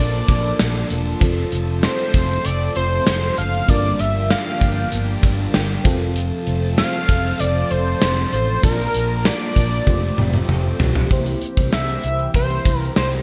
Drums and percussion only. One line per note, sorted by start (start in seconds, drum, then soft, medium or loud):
0.28 kick loud
0.28 closed hi-hat medium
0.59 snare loud
0.59 closed hi-hat medium
0.59 tambourine medium
0.90 closed hi-hat medium
1.21 kick loud
1.21 closed hi-hat medium
1.52 closed hi-hat medium
1.83 snare loud
1.83 closed hi-hat medium
1.83 tambourine medium
1.99 closed hi-hat medium
2.14 kick medium
2.14 closed hi-hat medium
2.45 closed hi-hat medium
2.76 closed hi-hat medium
3.06 snare loud
3.06 closed hi-hat loud
3.06 tambourine medium
3.38 closed hi-hat medium
3.53 closed hi-hat medium
3.68 kick loud
3.68 closed hi-hat medium
3.99 closed hi-hat medium
4.30 snare loud
4.30 closed hi-hat medium
4.30 tambourine medium
4.61 kick medium
4.61 closed hi-hat medium
4.92 closed hi-hat medium
5.23 kick loud
5.23 closed hi-hat medium
5.54 snare loud
5.54 closed hi-hat medium
5.54 tambourine medium
5.85 kick loud
5.85 closed hi-hat medium
6.16 closed hi-hat medium
6.47 closed hi-hat medium
6.78 snare loud
6.78 closed hi-hat medium
6.78 tambourine medium
7.09 kick medium
7.09 closed hi-hat medium
7.40 closed hi-hat medium
7.71 closed hi-hat medium
8.01 snare loud
8.01 closed hi-hat loud
8.01 tambourine medium
8.33 closed hi-hat medium
8.63 kick loud
8.63 closed hi-hat medium
8.94 closed hi-hat medium
9.25 snare loud
9.25 closed hi-hat medium
9.25 tambourine medium
9.56 kick medium
9.56 closed hi-hat medium
9.87 kick loud
9.87 high tom medium
10.18 mid tom medium
10.34 mid tom medium
10.49 mid tom medium
10.80 floor tom loud
10.95 floor tom medium
11.11 kick loud
11.11 closed hi-hat medium
11.26 closed hi-hat medium
11.42 closed hi-hat medium
11.57 kick medium
11.57 closed hi-hat soft
11.73 snare loud
11.88 closed hi-hat medium
12.04 closed hi-hat medium
12.19 closed hi-hat soft
12.34 kick medium
12.34 closed hi-hat medium
12.50 closed hi-hat soft
12.65 kick medium
12.65 closed hi-hat medium
12.81 closed hi-hat soft
12.96 snare loud
13.12 closed hi-hat soft